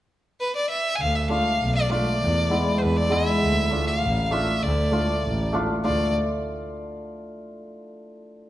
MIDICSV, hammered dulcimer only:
0, 0, Header, 1, 2, 480
1, 0, Start_track
1, 0, Tempo, 606061
1, 798, Time_signature, 2, 2, 24, 8
1, 6730, End_track
2, 0, Start_track
2, 0, Title_t, "Hammered dulcimer"
2, 0, Program_c, 0, 15
2, 1023, Note_on_c, 0, 57, 51
2, 1033, Note_on_c, 0, 62, 49
2, 1036, Note_on_c, 0, 65, 52
2, 1150, Note_off_c, 0, 57, 0
2, 1155, Note_off_c, 0, 62, 0
2, 1156, Note_off_c, 0, 65, 0
2, 1500, Note_on_c, 0, 57, 61
2, 1507, Note_on_c, 0, 62, 57
2, 1514, Note_on_c, 0, 65, 65
2, 1627, Note_off_c, 0, 57, 0
2, 1631, Note_off_c, 0, 62, 0
2, 1634, Note_off_c, 0, 65, 0
2, 1977, Note_on_c, 0, 56, 44
2, 1984, Note_on_c, 0, 59, 42
2, 1990, Note_on_c, 0, 64, 55
2, 2108, Note_off_c, 0, 59, 0
2, 2111, Note_off_c, 0, 64, 0
2, 2442, Note_off_c, 0, 56, 0
2, 2451, Note_on_c, 0, 56, 64
2, 2461, Note_on_c, 0, 59, 51
2, 2469, Note_on_c, 0, 64, 70
2, 2586, Note_off_c, 0, 59, 0
2, 2590, Note_off_c, 0, 64, 0
2, 2751, Note_off_c, 0, 56, 0
2, 2936, Note_on_c, 0, 57, 52
2, 2945, Note_on_c, 0, 62, 46
2, 2951, Note_on_c, 0, 65, 52
2, 3063, Note_off_c, 0, 57, 0
2, 3067, Note_off_c, 0, 62, 0
2, 3070, Note_off_c, 0, 65, 0
2, 3414, Note_on_c, 0, 57, 66
2, 3419, Note_on_c, 0, 62, 55
2, 3427, Note_on_c, 0, 65, 71
2, 3542, Note_off_c, 0, 57, 0
2, 3544, Note_off_c, 0, 62, 0
2, 3548, Note_off_c, 0, 65, 0
2, 3892, Note_on_c, 0, 57, 55
2, 3902, Note_on_c, 0, 62, 46
2, 3903, Note_on_c, 0, 65, 61
2, 4021, Note_off_c, 0, 57, 0
2, 4026, Note_off_c, 0, 62, 0
2, 4026, Note_off_c, 0, 65, 0
2, 4377, Note_on_c, 0, 57, 70
2, 4386, Note_on_c, 0, 62, 67
2, 4394, Note_on_c, 0, 65, 73
2, 4503, Note_off_c, 0, 57, 0
2, 4508, Note_off_c, 0, 62, 0
2, 4512, Note_off_c, 0, 65, 0
2, 4627, Note_on_c, 0, 57, 55
2, 4628, Note_on_c, 0, 62, 50
2, 4632, Note_on_c, 0, 65, 64
2, 4852, Note_off_c, 0, 57, 0
2, 4852, Note_off_c, 0, 62, 0
2, 4855, Note_off_c, 0, 65, 0
2, 6730, End_track
0, 0, End_of_file